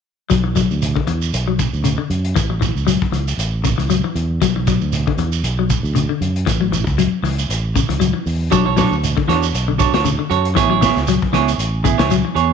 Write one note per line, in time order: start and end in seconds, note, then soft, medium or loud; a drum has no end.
0.30 0.66 B1 medium
0.30 0.40 F#3 medium
0.30 kick medium
0.30 closed hi-hat medium
0.30 shekere medium
0.44 0.52 E3 medium
0.56 0.74 F#3 medium
0.56 kick medium
0.56 closed hi-hat soft
0.56 shekere medium
0.71 0.94 D2 medium
0.71 shekere soft
0.82 closed hi-hat medium
0.82 shekere medium
0.96 1.04 D3 medium
0.96 muted fingered electric bass stroke soft
0.96 kick soft
1.07 1.30 E2 medium
1.07 1.26 E3 medium
1.07 closed hi-hat soft
1.07 shekere soft
1.22 shekere medium
1.33 1.69 B1 medium
1.33 closed hi-hat medium
1.33 shekere medium
1.48 1.66 F#3 medium
1.59 kick medium
1.59 closed hi-hat soft
1.59 shekere medium
1.73 1.96 D2 medium
1.73 shekere soft
1.84 1.94 C#3 medium
1.84 closed hi-hat medium
1.84 shekere medium
1.98 2.17 D3 medium
2.10 2.33 F#2 medium
2.10 closed hi-hat soft
2.10 shekere soft
2.24 closed hi-hat soft
2.36 2.72 A1 medium
2.36 2.46 E3 medium
2.36 kick medium
2.36 closed hi-hat medium
2.36 shekere medium
2.50 muted clean electric guitar stroke medium
2.61 2.79 E3 medium
2.61 kick medium
2.61 closed hi-hat soft
2.61 shekere medium
2.75 2.99 C#2 medium
2.75 shekere soft
2.87 3.05 F#3 medium
2.87 closed hi-hat medium
2.87 shekere medium
3.02 kick medium
3.12 3.35 C#2 medium
3.12 3.31 E3 medium
3.12 closed hi-hat soft
3.12 shekere soft
3.28 closed hi-hat soft
3.28 shekere medium
3.38 3.74 A1 medium
3.38 closed hi-hat medium
3.38 shekere medium
3.64 3.74 C#3 medium
3.64 kick medium
3.64 closed hi-hat soft
3.64 shekere medium
3.78 4.01 C#2 medium
3.78 3.86 E3 medium
3.78 closed hi-hat soft
3.78 shekere soft
3.90 4.00 F#3 medium
3.90 closed hi-hat medium
3.90 shekere medium
4.04 4.23 E3 medium
4.15 4.38 E2 medium
4.15 closed hi-hat soft
4.15 shekere soft
4.42 4.77 B1 medium
4.42 4.52 F#3 medium
4.42 kick medium
4.42 closed hi-hat medium
4.42 shekere medium
4.56 4.64 E3 medium
4.67 4.86 F#3 medium
4.67 kick medium
4.67 closed hi-hat soft
4.67 shekere medium
4.81 5.04 D2 medium
4.81 shekere soft
4.92 closed hi-hat medium
4.92 shekere medium
5.07 5.15 D3 medium
5.07 kick medium
5.17 5.41 E2 medium
5.17 5.37 E3 medium
5.17 closed hi-hat soft
5.17 shekere soft
5.32 shekere medium
5.43 5.79 B1 medium
5.43 closed hi-hat medium
5.43 shekere medium
5.59 5.77 F#3 medium
5.70 kick medium
5.70 closed hi-hat soft
5.70 shekere medium
5.83 6.06 D2 medium
5.83 shekere soft
5.95 6.05 C#3 medium
5.95 closed hi-hat medium
5.95 shekere medium
6.09 6.28 D3 medium
6.21 6.44 F#2 medium
6.21 closed hi-hat soft
6.21 shekere soft
6.36 closed hi-hat soft
6.46 6.83 A1 medium
6.46 6.57 E3 medium
6.46 kick medium
6.46 closed hi-hat medium
6.46 shekere medium
6.61 6.69 F#3 medium
6.72 6.91 E3 medium
6.72 closed hi-hat soft
6.72 shekere medium
6.87 7.10 C#2 medium
6.87 kick medium
6.87 shekere soft
6.98 7.16 F#3 medium
6.98 closed hi-hat medium
6.98 shekere medium
7.12 muted fingered electric bass stroke soft
7.23 7.46 C#2 medium
7.23 7.42 E3 medium
7.23 open hi-hat medium
7.23 shekere soft
7.39 closed hi-hat soft
7.39 shekere medium
7.49 7.85 A1 medium
7.49 closed hi-hat medium
7.49 shekere medium
7.75 7.85 C#3 medium
7.75 kick medium
7.75 closed hi-hat soft
7.75 shekere medium
7.89 8.12 C#2 medium
7.89 7.97 E3 medium
7.89 closed hi-hat soft
7.89 shekere soft
8.00 8.10 F#3 medium
8.00 closed hi-hat medium
8.00 shekere medium
8.14 8.32 E3 medium
8.26 8.49 E2 medium
8.26 open hi-hat soft
8.26 shekere soft
8.51 8.88 B1 medium
8.51 8.62 F#3 medium
8.51 8.65 D4 medium
8.51 8.66 F#4 medium
8.51 8.65 A4 medium
8.51 8.65 C#5 medium
8.51 kick medium
8.51 closed hi-hat medium
8.51 shekere medium
8.66 8.74 E3 medium
8.66 8.76 A4 soft
8.66 8.77 C#5 soft
8.66 muted clean electric guitar stroke soft
8.77 8.95 F#3 medium
8.77 8.94 D4 medium
8.77 8.94 F#4 medium
8.77 8.94 A4 medium
8.77 8.94 C#5 medium
8.77 kick medium
8.77 snare medium
8.77 closed hi-hat soft
8.77 shekere medium
8.91 9.14 D2 medium
8.91 shekere soft
9.03 closed hi-hat medium
9.03 shekere medium
9.17 9.25 D3 medium
9.17 kick medium
9.28 9.51 E2 medium
9.28 9.46 E3 medium
9.28 9.45 D4 medium
9.28 9.45 F#4 medium
9.28 9.45 A4 medium
9.28 9.45 C#5 medium
9.28 snare soft
9.28 closed hi-hat soft
9.28 shekere soft
9.43 shekere medium
9.54 9.89 B1 medium
9.54 closed hi-hat medium
9.54 shekere medium
9.68 9.86 D3 medium
9.78 9.93 D4 soft
9.78 9.93 F#4 medium
9.78 9.93 A4 medium
9.78 9.92 C#5 medium
9.78 kick medium
9.78 closed hi-hat soft
9.78 shekere medium
9.93 10.17 D2 medium
9.93 10.08 A4 soft
9.93 10.08 C#5 medium
9.93 muted clean electric guitar stroke soft
9.93 snare medium
9.93 shekere soft
10.05 10.15 C#3 medium
10.05 closed hi-hat medium
10.05 shekere medium
10.19 10.37 D3 medium
10.30 10.54 F#2 medium
10.30 10.47 F#4 medium
10.30 10.47 A4 medium
10.30 10.47 C#5 medium
10.30 closed hi-hat soft
10.30 shekere soft
10.45 closed hi-hat soft
10.55 10.92 A1 medium
10.55 10.66 E3 medium
10.55 10.70 B3 medium
10.55 10.70 E4 medium
10.55 10.70 G#4 medium
10.55 10.69 C#5 medium
10.55 kick medium
10.55 closed hi-hat medium
10.55 shekere medium
10.70 10.78 F#3 medium
10.70 10.81 E4 soft
10.70 10.81 G#4 soft
10.70 10.81 C#5 medium
10.81 10.98 B3 medium
10.81 10.98 E4 medium
10.81 10.99 G#4 medium
10.81 10.99 C#5 medium
10.81 muted clean electric guitar stroke medium
10.81 kick medium
10.81 snare medium
10.81 closed hi-hat soft
10.81 shekere medium
10.96 11.19 C#2 medium
10.96 snare soft
10.96 shekere soft
11.07 11.26 F#3 medium
11.07 closed hi-hat medium
11.07 shekere medium
11.22 muted fingered electric bass stroke soft
11.22 kick medium
11.33 11.56 C#2 medium
11.33 11.52 E3 medium
11.33 11.50 B3 medium
11.33 11.50 E4 medium
11.33 11.50 G#4 medium
11.33 11.50 C#5 medium
11.33 snare soft
11.33 closed hi-hat soft
11.33 shekere soft
11.48 closed hi-hat soft
11.48 shekere medium
11.58 11.94 A1 medium
11.58 closed hi-hat medium
11.58 shekere medium
11.84 11.94 C#3 medium
11.84 11.99 B3 medium
11.84 11.98 E4 medium
11.84 11.98 G#4 medium
11.84 kick medium
11.84 closed hi-hat soft
11.84 shekere medium
11.98 12.22 C#2 medium
11.98 12.07 E3 medium
11.98 12.13 E4 soft
11.98 12.13 G#4 soft
11.98 12.13 C#5 medium
11.98 snare medium
11.98 closed hi-hat soft
11.98 shekere soft
12.10 12.21 F#3 medium
12.10 closed hi-hat medium
12.10 shekere medium
12.25 12.43 E3 medium
12.35 12.53 E2 medium
12.35 12.52 B3 medium
12.35 12.52 G#4 medium
12.35 12.52 C#5 medium
12.35 closed hi-hat soft
12.35 shekere soft